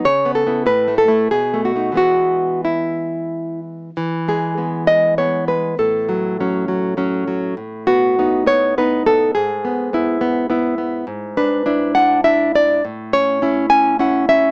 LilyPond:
\new Staff \with { instrumentName = "Nylon-string guitar" } { \time 3/4 \key e \major \tempo 4 = 101 << { cis''8 a'8 b'8 a'8 gis'8 fis'8 | fis'4 e'4. r8 | r8 gis'4 dis''8 cis''8 b'8 | a'2~ a'8 r8 |
r8 fis'4 cis''8 b'8 a'8 | gis'2~ gis'8 r8 | \key a \major r8 b'4 fis''8 e''8 d''8 | r8 cis''4 gis''8 fis''8 e''8 | } \\ { \tuplet 3/2 { cis8 b8 <b e'>8 a,8 a8 <a e'>8 b,8 a8 <a dis'>8 } | <e gis b>2. | e8 gis8 <gis b>8 gis8 <gis b>8 gis8 | a,8 fis8 <fis cis'>8 fis8 <fis cis'>8 fis8 |
a,8 b8 <b dis'>8 b8 <b dis'>8 b8 | gis,8 b8 <b e'>8 b8 <b e'>8 b8 | gis,8 d'8 <d' e'>8 d'8 <d' e'>8 d'8 | a,8 cis'8 <cis' e'>8 cis'8 <cis' e'>8 cis'8 | } >> }